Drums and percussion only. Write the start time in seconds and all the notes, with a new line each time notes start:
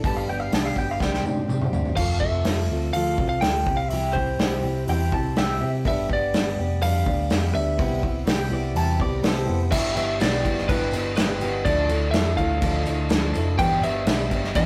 0.04 kick, open hi-hat, tambourine
0.16 tambourine
0.28 tambourine
0.52 snare, open hi-hat, tambourine
0.76 kick, tambourine
0.90 tambourine
1.00 kick, snare, tambourine
1.14 snare
1.25 high tom, tambourine
1.37 high tom, tambourine
1.49 mid tom, tambourine
1.61 mid tom
1.73 floor tom, tambourine
1.85 floor tom, tambourine
1.97 kick, crash
2.21 kick
2.45 snare, open hi-hat
2.94 open hi-hat
3.18 kick
3.42 snare, open hi-hat
3.67 kick
3.90 open hi-hat
4.15 kick
4.39 snare, open hi-hat
4.88 open hi-hat
5.12 kick
5.36 snare, open hi-hat
5.85 kick, open hi-hat
6.10 kick
6.34 snare, open hi-hat, tambourine
6.82 open hi-hat
7.06 kick
7.30 snare, open hi-hat, tambourine
7.79 kick, open hi-hat
8.03 kick
8.27 snare, open hi-hat, tambourine
8.76 open hi-hat
9.00 kick
9.24 snare, open hi-hat, tambourine
9.72 kick, crash
9.97 tambourine, crash
10.20 snare, tambourine, crash
10.32 snare, tambourine
10.45 kick, crash
10.56 snare, tambourine
10.69 kick, crash
10.80 tambourine
10.91 tambourine, crash
11.15 snare, tambourine, crash
11.28 tambourine
11.40 tambourine, crash
11.65 kick, crash
11.89 tambourine, crash
12.14 snare, tambourine, crash
12.25 tambourine
12.37 kick, tambourine, crash
12.49 tambourine
12.61 kick, tambourine, crash
12.74 tambourine
12.85 tambourine, crash
12.98 tambourine
13.09 snare, tambourine, crash
13.22 tambourine
13.34 tambourine, crash
13.59 kick, crash
13.83 tambourine, crash
14.07 snare, tambourine, crash
14.19 tambourine
14.31 kick, crash
14.44 snare
14.55 kick, tambourine, crash